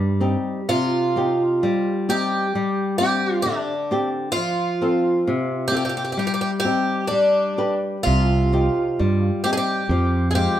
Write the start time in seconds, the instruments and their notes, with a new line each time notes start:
Already playing: fretless electric bass G2, nylon-string guitar G3, twelve-string acoustic guitar B4
0.20 nylon-string guitar C4 D#4 G4
0.69 nylon-string guitar C3, twelve-string acoustic guitar F4
1.16 nylon-string guitar C4 D#4 G4
1.63 nylon-string guitar G3
2.09 nylon-string guitar C4 D#4 G4, twelve-string acoustic guitar G4
2.55 nylon-string guitar G3
2.98 nylon-string guitar C4 D4 G4, twelve-string acoustic guitar G4
3.42 nylon-string guitar D3, twelve-string acoustic guitar D4
3.91 nylon-string guitar C4 D4 G4
4.32 twelve-string acoustic guitar F4
4.37 nylon-string guitar F3
4.82 nylon-string guitar C4 F4 A4
5.27 nylon-string guitar C3
5.68 nylon-string guitar C4 F4, twelve-string acoustic guitar G4
5.72 nylon-string guitar A4
5.77 twelve-string acoustic guitar G4
5.85 twelve-string acoustic guitar G4
5.89 twelve-string acoustic guitar G4
5.97 twelve-string acoustic guitar G4
6.05 twelve-string acoustic guitar G4
6.12 twelve-string acoustic guitar G4
6.17 nylon-string guitar G3, twelve-string acoustic guitar G4
6.27 twelve-string acoustic guitar G4
6.34 twelve-string acoustic guitar G4
6.41 twelve-string acoustic guitar G4
6.60 twelve-string acoustic guitar G4
6.64 nylon-string guitar C4 D#4 G4
7.07 nylon-string guitar G3, twelve-string acoustic guitar D4
7.58 nylon-string guitar D4 G4 B4
8.03 fretless electric bass C2, nylon-string guitar C3, twelve-string acoustic guitar F4
8.52 nylon-string guitar C4 D#4 G4
8.99 fretless electric bass G2, nylon-string guitar G3
9.44 nylon-string guitar C4 D#4 G4, twelve-string acoustic guitar G4
9.53 twelve-string acoustic guitar G#4
9.57 twelve-string acoustic guitar G4
9.89 fretless electric bass F2, nylon-string guitar F3
10.31 nylon-string guitar C4, twelve-string acoustic guitar G#4
10.35 nylon-string guitar G#3 F4, twelve-string acoustic guitar G4